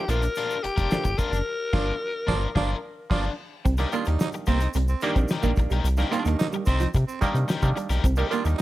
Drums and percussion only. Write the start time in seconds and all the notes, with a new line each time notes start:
0.09 closed hi-hat, shaker
0.22 closed hi-hat, shaker
0.35 closed hi-hat, shaker
0.50 shaker
0.64 closed hi-hat
0.78 kick, closed hi-hat, shaker
0.91 snare, shaker
1.04 kick, closed hi-hat, shaker
1.18 kick, closed hi-hat, shaker
1.33 snare, closed hi-hat, shaker
1.73 kick, snare, crash
2.28 kick, snare
2.56 kick, snare
3.11 kick, snare, crash
3.66 kick, closed hi-hat, shaker
3.77 snare, closed hi-hat, shaker
3.92 closed hi-hat, shaker
4.05 closed hi-hat, shaker
4.20 snare, shaker
4.32 closed hi-hat, shaker
4.46 kick, closed hi-hat, shaker
4.60 closed hi-hat, shaker
4.74 closed hi-hat, shaker
4.88 shaker
5.01 closed hi-hat, shaker
5.16 kick, closed hi-hat, shaker
5.28 snare, shaker
5.43 kick, shaker
5.56 kick, closed hi-hat, shaker
5.70 closed hi-hat, shaker
5.85 closed hi-hat, shaker
5.97 snare, closed hi-hat, shaker
6.12 closed hi-hat, shaker
6.25 closed hi-hat, shaker
6.39 snare, shaker
6.53 shaker
6.66 kick, closed hi-hat, shaker
6.80 closed hi-hat, shaker
6.94 kick, closed hi-hat, shaker
7.09 shaker
7.22 kick, closed hi-hat, shaker
7.35 closed hi-hat, shaker
7.48 snare, shaker
7.62 kick, shaker
7.77 closed hi-hat, shaker
7.89 snare, closed hi-hat, shaker
8.04 kick, closed hi-hat, shaker
8.16 shaker
8.31 closed hi-hat, shaker
8.45 closed hi-hat, shaker